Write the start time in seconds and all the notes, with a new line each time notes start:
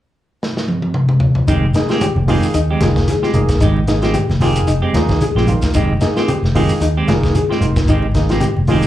0.43 snare
0.57 snare
0.68 high tom
0.82 high tom
0.94 mid tom
1.09 mid tom
1.20 floor tom
1.35 floor tom
1.48 F1 D#3 G#3 C4 D#4 G4, kick, closed hi-hat, shekere
1.74 A#3 D#4 G#4, snare, closed hi-hat, shekere
1.88 G#3 C4 F4 G4, snare, shekere
2.01 G4, closed hi-hat, high conga, shekere
2.15 F1, high conga
2.28 D#3 G#3 A#3 C4 D#4 F4 G4 G#4, open hi-hat, high conga, low conga, shekere
2.43 shekere
2.54 D#2 D#4, closed hi-hat, shekere
2.71 G#3 C4 G4
2.81 F1 A#3 D#4 F4 G#4, snare, closed hi-hat, high conga, shekere
2.96 kick, snare, shekere
3.08 G#4, snare, closed hi-hat, high conga, shekere
3.22 G#3 C4 F4 G4, snare
3.34 F1 A#3 D#4 G#4, closed hi-hat, high conga, low conga, shekere
3.48 kick, snare, closed hi-hat, shekere
3.60 G#1 D#3 G#3 D#4 G4, muted clean electric guitar stroke, kick, closed hi-hat, shekere
3.76 high conga
3.87 A#3 D#4 G#4, snare, closed hi-hat, shekere
4.02 G#3 C4 F4 G4, snare, closed hi-hat, shekere
4.14 G4, closed hi-hat, high conga, shekere
4.28 F1, snare, high conga
4.41 A#3 C4 D#4 F4 G4 G#4, muted clean electric guitar stroke, snare, open hi-hat, high conga, low conga, shekere
4.56 closed hi-hat, shekere
4.67 F1 D#4, closed hi-hat, shekere
4.82 G#3 C4 G4
4.93 D#2 A#3 D#4 F4 G#4, snare, closed hi-hat, high conga, shekere
5.08 kick, snare, high conga, low conga, shekere
5.21 G#4, closed hi-hat, high conga, shekere
5.35 A#1 G#3 C4 F4 G4, snare
5.47 A#3 D#4 F4, closed hi-hat, high conga, low conga, shekere
5.62 kick, snare, closed hi-hat, shekere
5.74 F1 D#3 G#3 C4 D#4 G4, kick, closed hi-hat, shekere
6.01 A#3 D#4 G#4, snare, closed hi-hat, shekere
6.16 C4 F4 G4, snare, shekere
6.28 G4, closed hi-hat, high conga, shekere
6.42 F1, snare, high conga
6.55 D#3 G#3 A#3 C4 D#4 F4 G4 G#4, open hi-hat, high conga, low conga, shekere
6.69 shekere
6.81 D#2 D#4, closed hi-hat, shekere
6.97 G#3 C4 G4
7.08 F1 A#3 D#4 F4 G#4, snare, closed hi-hat, high conga, shekere
7.23 kick, snare, shekere
7.35 G#4, closed hi-hat, high conga, shekere
7.49 G#3 C4 F4 G4, snare
7.60 F1 A#3 D#4 F4, closed hi-hat, low conga, shekere
7.76 kick, snare, closed hi-hat, shekere
7.87 G#1 D#3 G#3 C4 D#4 G4, kick, closed hi-hat, shekere
8.02 high conga
8.14 A#3 D#4 G#4, kick, snare, closed hi-hat, shekere
8.29 G#3 C4 F4 G4, snare, closed hi-hat, shekere
8.40 G4, closed hi-hat, high conga, shekere
8.56 F1, high conga
8.67 D#3 G#3 A#3 C4 D#4 F4 G#4 G#5, open hi-hat, high conga, low conga, shekere
8.71 G4
8.82 closed hi-hat, shekere